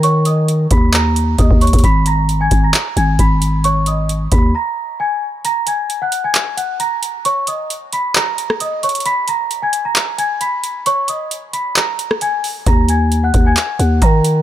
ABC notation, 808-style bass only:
X:1
M:4/4
L:1/16
Q:1/4=133
K:Ebm
V:1 name="808-style bass" clef=bass
E,6 E,,6 E,, E,,2 E,, | A,,,6 A,,,2 z2 A,,,2 A,,,4- | A,,,6 E,,2 z8 | z16 |
z16 | z16 | z16 | E,,6 E,,2 z2 E,,2 E,4 |]